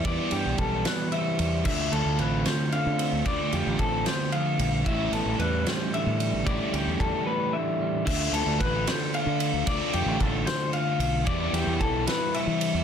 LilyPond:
<<
  \new Staff \with { instrumentName = "Clean electric guitar" } { \time 6/8 \key d \dorian \tempo 4. = 75 d''8 g'8 a'8 b'8 e''4 | e''8 a'8 b'8 c''8 f''4 | d''8 g'8 a'8 c''8 f''4 | e''8 a'8 b'8 c''8 e''4 |
d''8 g'8 a'8 b'8 e''4 | e''8 a'8 b'8 c''8 f''4 | d''8 g'8 a'8 c''8 f''4 | d''8 g'8 a'8 b'8 e''4 | }
  \new Staff \with { instrumentName = "Overdriven electric guitar" } { \time 6/8 \key d \dorian <e g b e'>2. | <d a d' f'>2. | <d a d' f'>2. | <a, e g cis' e'>2. |
<a, e g cis' e'>2. | <d a d' f'>2. | <d a d' f'>2. | <e g b e'>2. | }
  \new Staff \with { instrumentName = "Clean electric guitar" } { \clef bass \time 6/8 \key d \dorian << { g8 d'8 g4. g8 | r8 f'8 c'4. c'8 | r8 f'8 c'2 | r8 b16 r16 g4. g8~ |
g4 g4. g8 | r2. | r2. | r2. | } \\ { e,4. b,8 e4 | d,4. a,8 d4 | d,4. e,8 f,8 g,8 | a,4. a,8 d4 |
a,4. a,8 d4~ | d2. | r2. | r2. | } >> }
  \new Staff \with { instrumentName = "Fingered electric bass" } { \clef bass \time 6/8 \key d \dorian e,16 r16 g,16 b,,16 b,,8 r4 e,8 | d,8 d,16 d,16 a,,8 r8. d8 d,16 | d,16 r16 f,16 a,,16 a,,8 r4 bes,,8 | a,,8 a,,16 a,,16 e,8 r8. a,8 a,,16 |
a,,16 r16 d,16 e,16 e,16 r4. r16 | d,8 d,16 d,16 a,,8 r8. d8 d,16 | d,16 r16 f,16 a,,16 a,,8 r4 b,,8 | e,8 e,16 e,16 b,,8 r8. e8 e,16 | }
  \new DrumStaff \with { instrumentName = "Drums" } \drummode { \time 6/8 <bd cymr>8 cymr8 <bd cymr>8 <cymr sn>8 cymr8 cymr8 | <cymc bd>8 cymr8 cymr8 <cymr sn>8 cymr8 cymr8 | <bd cymr>8 cymr8 <bd cymr>8 <cymr sn>8 cymr8 cymr8 | <bd cymr>8 cymr8 cymr8 <cymr sn>8 cymr8 cymr8 |
<bd cymr>8 cymr8 <bd cymr>8 r4. | <cymc bd>8 cymr8 <bd cymr>8 <cymr sn>8 cymr8 cymr8 | <bd cymr>8 cymr8 <bd cymr>8 <cymr sn>8 cymr8 cymr8 | <bd cymr>8 cymr8 <bd cymr>8 <cymr sn>8 cymr8 cymr8 | }
>>